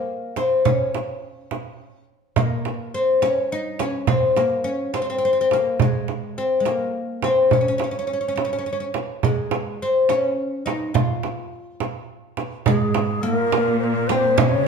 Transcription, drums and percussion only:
0.36 frame drum
0.65 frame drum
0.95 frame drum
1.51 frame drum
2.36 frame drum
2.65 frame drum
3.22 frame drum
3.79 frame drum
4.07 frame drum
4.36 frame drum
4.94 frame drum
5.51 frame drum
5.79 frame drum
6.08 frame drum
6.65 frame drum
7.22 frame drum
7.51 frame drum
7.80 frame drum
8.38 frame drum
8.94 frame drum
9.23 frame drum
9.51 frame drum
10.09 frame drum
10.67 frame drum
10.95 frame drum
11.23 frame drum
11.80 frame drum
12.37 frame drum
12.66 frame drum
12.94 frame drum
13.52 frame drum
14.09 frame drum
14.38 frame drum

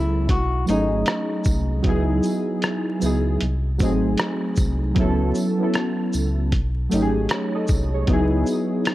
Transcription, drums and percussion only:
0.29 kick, closed hi-hat
0.67 closed hi-hat, tambourine, shaker
1.06 cross-stick, closed hi-hat
1.44 kick, tambourine, shaker
1.84 kick, closed hi-hat
2.23 tambourine, shaker
2.62 cross-stick, closed hi-hat
3.01 tambourine, shaker
3.40 closed hi-hat
3.79 kick, closed hi-hat, tambourine, shaker
4.18 cross-stick, closed hi-hat
4.56 kick, tambourine, shaker
4.96 kick, closed hi-hat
5.35 tambourine, shaker
5.74 cross-stick, closed hi-hat
6.13 tambourine, shaker
6.52 kick, closed hi-hat
6.91 closed hi-hat, tambourine, shaker
7.29 cross-stick, closed hi-hat
7.67 kick, tambourine, shaker
8.07 kick, closed hi-hat
8.46 tambourine, shaker
8.85 cross-stick, closed hi-hat

